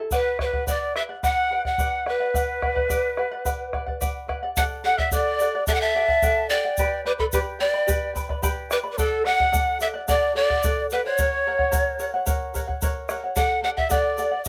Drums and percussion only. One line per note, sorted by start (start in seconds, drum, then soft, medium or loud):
0.11 bombo low medium
0.11 shaker medium
0.39 bombo rim medium
0.39 bombo low medium
0.53 bombo low medium
0.67 bombo low medium
0.67 shaker medium
0.96 bombo rim soft
1.23 bombo low medium
1.23 shaker medium
1.65 bombo low medium
1.78 bombo low medium
1.78 shaker medium
2.06 bombo rim soft
2.34 bombo low medium
2.34 shaker medium
2.62 bombo rim medium
2.62 bombo low medium
2.76 bombo low medium
2.90 bombo low medium
2.90 shaker medium
3.17 bombo rim soft
3.45 bombo low medium
3.45 shaker medium
3.73 bombo rim soft
3.73 bombo low soft
3.87 bombo low soft
4.01 bombo low medium
4.01 shaker medium
4.29 bombo rim soft
4.29 bombo low soft
4.57 bombo low medium
4.57 shaker loud
4.98 bombo low medium
5.12 bombo low medium
5.12 shaker loud
5.40 shaker medium
5.67 bombo low medium
5.67 shaker medium
6.08 bombo low soft
6.22 bombo low medium
6.22 shaker medium
6.50 shaker medium
6.77 bombo low medium
6.77 shaker medium
7.19 bombo low medium
7.32 bombo low medium
7.32 shaker loud
7.88 bombo low medium
7.88 shaker loud
8.16 bombo low medium
8.16 shaker medium
8.30 bombo low medium
8.43 bombo low medium
8.43 shaker medium
8.71 bombo rim medium
8.71 shaker medium
8.98 bombo low medium
8.98 shaker loud
9.40 bombo low medium
9.54 bombo low medium
9.54 shaker loud
9.80 shaker medium
10.08 bombo low medium
10.08 shaker loud
10.50 bombo low medium
10.63 bombo low medium
10.63 shaker medium
10.90 shaker medium
11.18 bombo low medium
11.18 shaker medium
11.59 bombo low medium
11.73 bombo low medium
11.73 shaker medium
11.99 shaker medium
12.27 bombo low medium
12.27 shaker medium
12.55 bombo low medium
12.55 shaker medium
12.69 bombo low medium
12.82 bombo low medium
12.82 shaker medium
13.09 bombo rim medium
13.09 shaker medium
13.36 bombo low medium
13.36 shaker medium
13.78 bombo low medium
13.90 bombo low medium
13.90 shaker medium
14.18 shaker medium
14.45 shaker medium